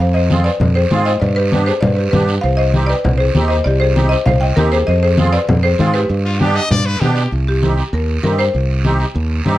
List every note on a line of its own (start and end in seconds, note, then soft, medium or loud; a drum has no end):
0.00 0.48 F2 medium
0.00 0.08 C5 medium
0.00 high conga soft
0.00 long guiro medium
0.14 0.44 C5 medium
0.14 0.46 D#5 loud
0.30 0.51 C4 medium
0.30 0.51 F4 medium
0.30 0.52 G#4 medium
0.30 high conga medium
0.30 short guiro medium
0.44 0.74 B4 medium
0.44 0.73 D5 loud
0.44 short guiro medium
0.60 0.84 F2 medium
0.60 high conga soft
0.60 low conga medium
0.60 long guiro medium
0.75 1.04 G#4 medium
0.75 1.06 C5 medium
0.91 1.15 G#2 loud
0.91 1.12 C4 medium
0.91 1.12 F4 medium
0.91 1.12 G#4 medium
0.91 high conga medium
0.91 short guiro medium
1.05 1.21 C5 medium
1.05 1.22 D#5 loud
1.05 short guiro medium
1.20 1.70 G2 medium
1.20 1.28 B4 medium
1.20 1.27 D5 medium
1.20 high conga soft
1.20 low conga medium
1.20 long guiro medium
1.36 1.66 G4 medium
1.36 1.68 B4 medium
1.52 1.73 B3 medium
1.52 1.73 D4 medium
1.52 1.73 G4 medium
1.52 high conga medium
1.52 short guiro medium
1.66 1.82 G#4 medium
1.66 1.83 C5 medium
1.66 short guiro medium
1.81 2.07 G2 medium
1.81 1.95 B4 medium
1.81 1.96 D5 medium
1.81 high conga soft
1.81 low conga medium
1.81 long guiro medium
1.97 2.06 G4 medium
1.97 2.04 B4 medium
2.11 2.38 G2 loud
2.11 2.34 B3 medium
2.11 2.35 D4 medium
2.11 2.35 G4 medium
2.11 2.33 B4 medium
2.11 high conga medium
2.11 low conga medium
2.11 short guiro medium
2.28 short guiro medium
2.41 2.92 C2 medium
2.41 2.50 C5 medium
2.41 2.49 F5 loud
2.41 high conga soft
2.41 long guiro medium
2.57 2.87 C5 medium
2.57 2.86 D#5 loud
2.74 2.95 C4 medium
2.74 2.95 D#4 medium
2.74 2.96 G4 medium
2.74 high conga medium
2.74 short guiro medium
2.86 3.18 B4 medium
2.86 3.16 D5 loud
2.86 short guiro medium
3.04 3.29 C2 medium
3.04 high conga soft
3.04 low conga medium
3.04 long guiro medium
3.18 3.48 G#4 medium
3.18 3.49 C5 loud
3.35 3.59 D#2 medium
3.35 3.57 C4 medium
3.35 3.57 D#4 medium
3.35 3.57 G4 medium
3.35 high conga medium
3.35 short guiro medium
3.48 3.64 C5 medium
3.48 3.65 D#5 loud
3.48 short guiro medium
3.64 4.14 C2 medium
3.64 3.74 G4 medium
3.64 3.71 D5 loud
3.64 high conga soft
3.64 long guiro medium
3.80 4.09 G#4 medium
3.80 4.09 C5 medium
3.95 4.17 C4 medium
3.95 4.17 D#4 medium
3.95 4.17 G4 medium
3.95 high conga medium
3.95 short guiro medium
4.09 4.18 C5 medium
4.09 4.16 D#5 loud
4.09 short guiro medium
4.26 4.51 C2 medium
4.26 4.34 C5 medium
4.26 4.33 F5 medium
4.26 high conga soft
4.26 low conga medium
4.26 long guiro medium
4.41 4.49 D#5 medium
4.41 4.48 G5 loud
4.56 4.81 D#2 loud
4.56 4.78 C4 medium
4.56 4.78 D#4 medium
4.56 4.78 G4 medium
4.56 4.65 G4 medium
4.56 4.63 A#4 loud
4.56 high conga medium
4.56 short guiro medium
4.72 4.88 G#4 medium
4.72 4.88 C5 medium
4.72 short guiro medium
4.87 5.36 F2 medium
4.87 4.96 C5 medium
4.87 4.94 D#5 loud
4.87 high conga soft
4.87 long guiro medium
5.03 5.32 G#4 medium
5.03 5.31 C5 loud
5.17 5.39 C4 medium
5.17 5.39 F4 medium
5.17 5.40 G#4 medium
5.17 high conga medium
5.17 short guiro medium
5.32 5.62 B4 medium
5.32 5.64 D5 loud
5.32 short guiro medium
5.48 5.73 F2 medium
5.48 high conga soft
5.48 low conga loud
5.48 long guiro medium
5.63 5.92 G#4 medium
5.63 5.95 C5 medium
5.78 6.04 G#2 loud
5.78 6.00 C4 medium
5.78 6.00 F4 medium
5.78 6.01 G#4 medium
5.78 high conga medium
5.78 short guiro medium
5.94 6.98 G4 medium
5.94 6.97 B4 medium
5.94 short guiro medium
6.09 6.58 G2 medium
6.09 high conga soft
6.09 long guiro medium
6.25 6.41 F4 medium
6.40 6.61 B3 medium
6.40 6.62 D4 medium
6.40 6.57 G4 medium
6.40 6.62 G4 loud
6.40 high conga medium
6.40 short guiro medium
6.55 6.70 D#5 loud
6.55 short guiro medium
6.70 6.95 G2 medium
6.70 6.87 D5 loud
6.70 high conga soft
6.70 low conga loud
6.70 long guiro medium
6.86 7.02 B4 loud
7.00 7.26 B2 loud
7.00 7.23 B3 medium
7.00 7.23 D4 medium
7.00 7.31 G4 medium
7.00 7.23 G4 medium
7.00 high conga medium
7.00 short guiro medium
7.16 short guiro medium
7.31 7.81 C2 medium
7.31 high conga soft
7.31 long guiro medium
7.48 7.90 G4 medium
7.62 7.83 C4 medium
7.62 7.84 D#4 medium
7.62 7.84 G4 medium
7.62 high conga medium
7.62 short guiro medium
7.78 short guiro medium
7.93 8.17 D#2 medium
7.93 8.23 A#4 medium
7.93 high conga soft
7.93 long guiro medium
8.23 8.48 G2 medium
8.23 8.45 C4 medium
8.23 8.45 D#4 medium
8.23 8.45 G4 medium
8.23 8.31 A#4 loud
8.23 high conga medium
8.23 short guiro medium
8.38 8.96 C5 loud
8.38 short guiro medium
8.54 9.03 C2 medium
8.54 high conga soft
8.54 long guiro medium
8.84 9.06 C4 medium
8.84 9.06 D#4 medium
8.84 9.06 G4 medium
8.84 high conga medium
8.84 short guiro medium
9.00 short guiro medium
9.14 9.40 D#2 medium
9.14 high conga soft
9.14 long guiro medium
9.44 9.58 G2 medium
9.44 9.58 C4 medium
9.44 9.58 D#4 medium
9.44 9.58 G4 medium
9.44 high conga medium
9.44 short guiro medium